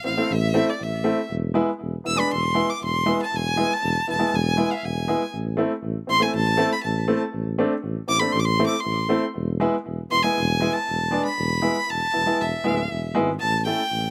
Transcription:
0.04 A1 C4 E4 F5
0.17 A3 C4 E4
0.30 A1 E5
0.54 A3 C4 E4
0.70 D5
0.80 A1 E5
1.04 A3 C4 E4
1.30 E1
1.54 G#3 B3 E4
1.82 E1
2.04 E1 B3 E4 E6
2.16 G#3 B3 D4 B5
2.32 E1 C6
2.54 G#3 B3 E4
2.70 D6
2.82 E1 C6
3.06 G#3 B3 E4
3.23 A5
3.33 E1 G#5
3.57 G#3 B3 E4
3.74 A5
3.83 E1
4.07 E1 B3 E4 A5
4.19 G#3 B3 E4
4.33 E1 G#5
4.57 G#3 B3 E4
4.71 E5 F5
4.77 F5
4.83 E1 G#5
5.08 G#3 B3 E4
5.33 A1
5.57 A3 C4 E4
5.83 A1
6.07 A1 C4 E4 C6
6.20 A3 C4 E4 G#5
6.34 A1 A5
6.57 A3 C4 E4
6.72 B5
6.83 A1 A5
7.08 A3 C4 E4
7.34 A1
7.58 A3 C4 D4
7.83 A1
8.08 A1 C4 E4 D6
8.20 A3 C4 D4 B5
8.32 A1 C6
8.40 D6
8.45 C6
8.59 A3 C4 E4
8.66 D6
8.80 C6
8.85 A1
9.09 A3 C4 E4
9.36 E1
9.60 G#3 B3 E4
9.87 E1
10.10 E1 B3 E4 C6
10.23 G#3 B3 E4 G#5
10.38 E1
10.61 G#3 B3 E4
10.73 A5
10.89 E1
11.11 G#3 B3 D4
11.25 B5
11.38 E1
11.62 G#3 B3 E4
11.89 E1 A5
12.13 E1 B3 E4
12.26 G#3 B3 E4
12.39 E1 E5
12.64 D1 G#3 B3 E4
12.91 E1
13.15 G#1 G#3 B3 E4
13.39 A1 A5
13.65 A3 C#4 E4 G5
13.92 A1

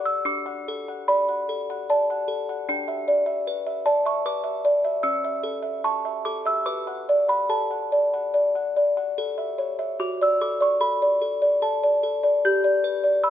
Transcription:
Already playing: D4 D5
0.00 F#5
0.06 E6
0.25 D4 D6
0.46 F#5
0.68 A4
0.88 F#5
1.08 D5 B5
1.29 F#5
1.49 A4
1.70 F#5
1.90 D5 A5
2.10 F#5
2.28 A4
2.49 F#5
2.69 D4 G5
2.88 E5
3.08 D5
3.26 E5
3.47 B4
3.67 E5
3.86 D5 A5
4.06 E5 C#6
4.26 B4 D6
4.44 E5
4.65 D5
4.85 E5
5.03 C#4 E6
5.25 E5
5.43 A4
5.63 E5
5.84 A5 C#6
6.05 E5
6.25 A4 D6
6.46 E5 E6
6.66 B4 D6
6.87 F#5
7.09 D5
7.28 F#5 B5
7.49 A4 A5
7.71 F#5
7.92 D5
8.14 F#5
8.34 D5
8.55 F#5
8.76 D5
8.97 F#5
9.18 A4
9.38 E5
9.58 C#5
9.79 E5
10.00 F#4 D6
10.21 D5 E6
10.41 A4 D6
10.61 D5 C#6
10.81 A4 B5
11.02 D5
11.22 A4
11.42 D5
11.62 A4 A5
11.84 D5
12.03 A4
12.23 D5
12.45 G4 G6
12.64 D5
12.84 B4
13.04 D5
13.24 B5 E6

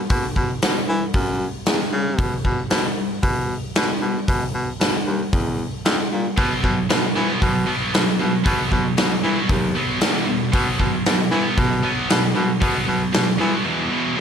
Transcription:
0.10 B2, kick, open hi-hat
0.36 B2, kick
0.62 B2, snare, open hi-hat
0.89 E3
1.14 F#2, kick, open hi-hat
1.66 E2, snare, open hi-hat
1.92 C#3
2.18 B2, kick, open hi-hat
2.45 B2, kick
2.70 B2, snare, open hi-hat
3.23 B2, kick, open hi-hat
3.75 B2, snare, open hi-hat
4.02 B2
4.28 B2, kick, open hi-hat
4.54 B2
4.80 B2, snare, open hi-hat
5.06 D#2
5.33 E2, kick, open hi-hat
5.85 F2, snare, open hi-hat
6.12 A#2
6.37 B2 F#3 B3, kick, open hi-hat
6.63 B2 F#3, kick
6.89 B2 F#3, snare, open hi-hat
7.15 B2 E3 F#3 B3
7.41 B2 F#3, kick, open hi-hat
7.67 B2 F#3 B3
7.94 B2 F#3, snare, open hi-hat
8.20 B2 F#3
8.44 B2 F#3 B3, kick, open hi-hat
8.71 B2 F#3, kick
8.97 B2 F#3, snare, open hi-hat
9.23 B2 E3 F#3 B3
9.49 D#2 B2 F#3, kick, open hi-hat
9.75 B2 F#3 B3
10.00 E2 B2 E3, snare, open hi-hat
10.26 E2 B2
10.52 B2 F#3 B3, kick, open hi-hat
10.79 B2 F#3, kick
11.06 B2 F#3, snare, open hi-hat
11.31 B2 E3 F#3 B3
11.58 B2 F#3, kick, open hi-hat
11.83 B2 F#3 B3
12.09 B2 F#3, snare, open hi-hat
12.35 B2 F#3
12.60 B2 F#3 B3, kick, open hi-hat
12.86 B2 F#3
13.13 B2 F#3, snare, open hi-hat
13.38 B2 E3 F#3 B3
13.64 E2 B2 E3
13.91 E2 B2 E3
14.17 F2 C3

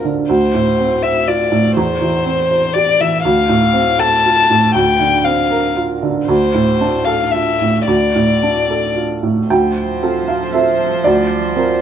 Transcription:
Already playing: D2 D3 C4 F4 C5
0.05 D3
0.29 D2 C5
0.54 A2
0.80 C4
1.03 C5 E5
1.27 F4 D5
1.52 A2
1.76 E2 C5
2.01 E3
2.25 C4
2.51 C5
2.74 G4 D5
3.00 E3 E5
3.24 D2 F5
3.49 A2
3.73 C4
3.99 A4 A5
4.26 F4
4.50 A2
4.74 D2 G5
5.00 D3
5.25 C4 F5
5.51 A#4
5.76 F4
6.03 D3
6.26 D2 C5
6.55 A2
6.81 D4
7.05 A4 F5
7.31 F4 E5
7.61 A2
7.87 D2 D5
8.15 A2
8.43 D4
8.70 A4
8.96 F4
9.23 A2
9.49 D2 F3 C5 G5
10.02 C4 F4 A4
10.28 F5
10.53 C4 F4 A4 E5
11.04 D2 D5
11.56 C4 F4 A#4

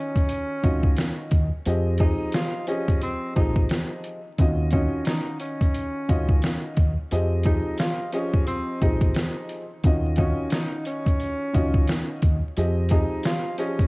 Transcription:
Already playing: D#3 C#4 F4 F#4 D#5
0.16 kick, closed hi-hat
0.29 closed hi-hat
0.63 C#2 D#3 C#4 F4 F#4 D#5, kick, closed hi-hat
0.83 kick
0.96 snare, closed hi-hat
1.31 D#2, kick, closed hi-hat
1.66 F2 F3 C4 G4 G#4 D#5, closed hi-hat
1.98 F3 C4 D#4 G4 G#4 D#5, kick, closed hi-hat
2.32 F4, snare, closed hi-hat
2.67 F3 C#4 G4 G#4 C5 D#5, closed hi-hat
2.88 kick, closed hi-hat
3.01 C4, closed hi-hat
3.35 A#1 F3 C4 D#4 G4 G#4 D#5, kick, closed hi-hat
3.56 kick
3.69 snare, closed hi-hat
4.04 closed hi-hat
4.38 D#2 D#3 C#4 F4 F#4 D#5, kick, closed hi-hat
4.71 D#3 C#4 F4 F#4 D#5, kick, closed hi-hat
5.05 D#4, snare, closed hi-hat
5.40 C#4, closed hi-hat
5.61 kick, closed hi-hat
5.74 closed hi-hat
6.08 C#2 D#3 C#4 F4 F#4 D#5, kick, closed hi-hat
6.29 kick
6.42 snare, closed hi-hat
6.77 D#2, kick, closed hi-hat
7.11 F2 F3 C4 G4 G#4 D#5, closed hi-hat
7.43 F3 C4 D#4 G4 G#4 D#5, kick, closed hi-hat
7.78 F4, snare, closed hi-hat
8.12 F3 C#4 G4 G#4 C5 D#5, closed hi-hat
8.34 kick
8.47 C4, closed hi-hat
8.81 A#1 F3 C4 D#4 G4 G#4 D#5, kick, closed hi-hat
9.01 kick, closed hi-hat
9.15 snare, closed hi-hat
9.49 closed hi-hat
9.84 D#2 D#3 C#4 F4 F#4 D#5, kick, closed hi-hat
10.16 D#3 C#4 F4 F#4 D#5, kick, closed hi-hat
10.50 D#4, snare, closed hi-hat
10.85 C#4, closed hi-hat
11.06 kick, closed hi-hat
11.20 closed hi-hat
11.53 C#2 D#3 C#4 F4 F#4 D#5, kick, closed hi-hat
11.74 kick
11.88 snare, closed hi-hat
12.22 D#2, kick, closed hi-hat
12.57 F2 F3 C4 G4 G#4 D#5, closed hi-hat
12.89 F3 C4 D#4 G4 G#4 D#5, kick, closed hi-hat
13.23 F4, snare, closed hi-hat
13.58 F3 C#4 G4 G#4 C5 D#5, closed hi-hat
13.79 kick, closed hi-hat

